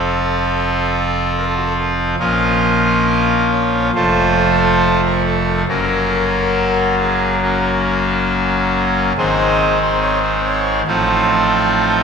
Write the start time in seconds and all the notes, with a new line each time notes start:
Already playing: F1 F2 F3 C4 F4 A4
1.37 A#4
1.47 A4
1.56 F#4
1.65 A4
2.19 A#1 A#2 F3 C#4 F4 A#4 D#5
3.51 C#5
3.95 F1 F2 F3 A3 F4 A4 C5
5.05 A#4
5.26 A4
5.68 F#1 F#2 F#3 A#3 C#4 F#4 A#4
7.00 G#4
7.42 A#3 C#4 F#4
9.17 G#1 G#2 D#3 G#3 C4 G#4 C5 D#5
9.82 C5
10.01 C#5
10.24 C5
10.45 C#5
10.87 A1 A2 F3 C4 D#4 F4 A4 C5